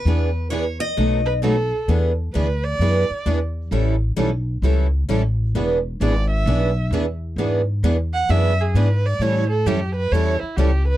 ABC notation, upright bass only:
X:1
M:4/4
L:1/8
Q:"Swing" 1/4=131
K:Emix
V:1 name="Upright bass" clef=bass
E,,4 B,,,4 | E,,2 D,,2 F,, z E,,2 | A,,,2 B,,,2 C,,2 A,,,2 | E,,,2 G,,,2 B,,,2 E,,2 |
G,,2 E,,2 F,,2 G,,2 | A,,2 F,,2 E,, z C,,2 |]